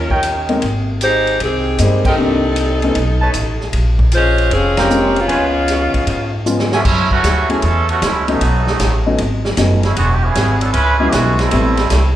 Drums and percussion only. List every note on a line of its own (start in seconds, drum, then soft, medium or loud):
0.10 kick medium
0.23 hi-hat pedal medium
0.23 ride medium
0.49 ride soft
0.62 ride medium
1.01 hi-hat pedal medium
1.01 ride medium
1.27 ride soft
1.40 ride medium
1.78 hi-hat pedal medium
1.78 ride medium
2.05 kick medium
2.05 crash medium
2.56 hi-hat pedal soft
2.56 ride medium
2.82 ride soft
2.95 ride medium
3.34 hi-hat pedal medium
3.34 ride medium
3.61 snare soft
3.73 ride medium
3.99 kick medium
4.12 hi-hat pedal medium
4.12 ride medium
4.38 ride soft
4.51 ride medium
4.77 snare medium
4.77 ride medium
4.90 hi-hat pedal medium
5.16 ride soft
5.29 ride medium
5.68 snare soft
5.68 hi-hat pedal medium
5.68 ride medium
5.94 kick medium
5.94 ride soft
6.07 ride medium
6.46 hi-hat pedal medium
6.59 snare medium
6.72 snare medium
6.85 kick medium
6.85 crash medium
7.11 kick medium
7.24 snare medium
7.24 hi-hat pedal medium
7.24 ride medium
7.50 ride soft
7.62 ride medium
7.89 ride soft
8.02 snare medium
8.02 hi-hat pedal medium
8.02 ride medium
8.28 ride soft
8.41 ride medium
8.67 snare medium
8.79 snare medium
8.79 hi-hat pedal medium
8.79 ride medium
9.18 ride medium
9.45 snare medium
9.57 snare medium
9.57 hi-hat pedal medium
9.57 ride medium
9.83 snare soft
9.83 ride soft
9.96 ride medium
10.35 snare medium
10.35 hi-hat pedal medium
10.35 ride medium
10.61 ride medium
10.73 ride medium
11.12 snare medium
11.12 hi-hat pedal medium
11.12 ride medium
11.39 snare soft
11.39 ride soft
11.51 ride medium
11.77 snare soft
11.77 ride soft
11.90 snare medium
11.90 hi-hat pedal medium
11.90 ride medium